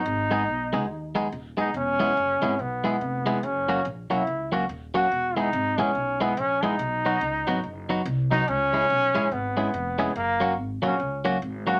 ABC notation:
X:1
M:4/4
L:1/8
Q:"Swing" 1/4=143
K:Elyd
V:1 name="Clean electric guitar"
z [G,B,DG] z [G,B,DG] z [G,B,DG] z [G,B,DG] | z [G,B,EG] z [G,B,EG] z [G,B,EG] z [G,B,EG] | z [F,A,CF] z [F,A,CF] z [F,A,CF] z [F,A,CF] | z [G,B,EG] z [G,B,EG] z [G,B,EG] z [G,B,EG] |
z [F,B,DF] z [F,B,DF] z [F,B,DF] z [F,B,DF] | z [G,CEG] z [G,CEG] z [G,CEG] z [G,CEG] | z [F,A,CF] z [F,A,CF] z [F,A,CF] z [F,A,CF] |]
V:2 name="Trombone"
D4- D z2 D | C4 B,4 | C2 z E2 z2 F- | F D2 C2 B, C D- |
D4- D z2 D | C4 B,4 | A,2 z C2 z2 F |]
V:3 name="Upright bass" clef=bass
G,,,2 B,,, C,, D,,2 D,,,2 | E,,,2 F,,, G,,, B,,,2 ^E,,,2 | F,,,2 A,,, B,,, C,,2 D,,,2 | E,,,2 G,,, A,,, B,,,2 A,,,2 |
B,,,2 C,, G,,, F,,,2 =C,,2 | C,,2 B,,, A,,, G,,,2 ^E,,,2 | F,,,2 G,,, A,,, C,,2 G,,,2 |]